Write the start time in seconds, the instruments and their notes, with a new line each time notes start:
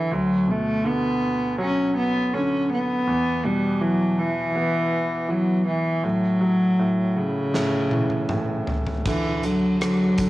Already playing: grand piano D3 F#3, cello E3
0.11 grand piano D2, cello F#3
0.48 grand piano B2, cello A3
0.84 grand piano D3, cello B3
1.59 grand piano F#3, cello C#4
1.98 cello B3
2.33 grand piano D3, cello C#4
2.73 cello B3
3.07 grand piano E2
3.45 grand piano B2, cello G3
3.81 grand piano E3, cello F#3
4.19 cello E3
4.55 grand piano B3
5.29 grand piano E3, cello F#3
5.67 cello E3
6.04 grand piano A2, cello F#3
6.41 grand piano F#3
6.79 grand piano A2
7.17 cello C#3
7.54 grand piano A2, snare
7.91 grand piano E3, high tom
8.10 high tom
8.29 grand piano A2, mid tom
8.67 floor tom
8.87 floor tom
9.06 grand piano D3, cello E3, kick, crash
9.43 grand piano D3, cello F#3, closed hi-hat
9.81 grand piano D3, cello F#3, cross-stick, closed hi-hat
10.18 grand piano D3, kick, closed hi-hat